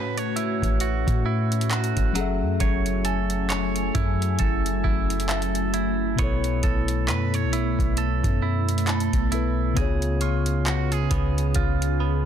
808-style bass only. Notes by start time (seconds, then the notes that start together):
Already playing: A2
0.63 A1
1.07 A2
1.97 F#1
2.41 F#2
2.60 F#1
3.95 F#2
4.40 F#1
4.84 F#1
6.19 B1
6.63 B1
7.08 F#2
7.44 B1
7.79 B1
8.24 F#2
9.13 B1
9.77 C#2
11.11 C#2
11.56 C#2